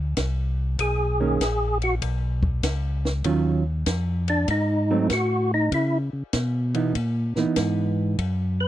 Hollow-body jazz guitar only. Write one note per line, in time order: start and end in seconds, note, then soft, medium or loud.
1.20 1.38 D#3 medium
1.20 1.39 A#3 medium
1.20 1.38 C#4 medium
3.25 3.62 D#3 medium
3.25 3.62 F#3 medium
3.25 3.62 C#4 medium
3.25 3.62 F4 medium
4.90 5.09 F#3 medium
4.90 5.09 A3 medium
4.90 5.09 C4 medium
6.74 6.93 E3 medium
6.74 6.94 B3 medium
6.74 6.94 D#4 medium
7.37 8.15 E3 medium
7.37 8.16 B3 medium
7.37 8.16 D#4 medium